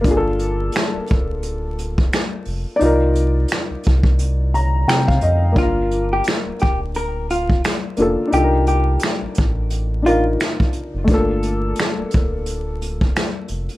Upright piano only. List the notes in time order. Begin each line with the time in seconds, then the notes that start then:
0.01 A#3 D4
0.07 F4 G#4
0.17 A4
2.76 D#4 D5
2.82 F4 A#4
4.54 A#5
4.88 G5
5.08 F5
5.23 D#5
5.52 A#3 D4
5.58 F4 A#4
7.97 A#3 D4 F4
8.01 A4
8.27 D4 D#4
8.34 F4 A4
8.43 A#4
10.02 D4 D#4 F4
10.07 A#4
11.04 A3 D4
11.11 A#3 F4 A4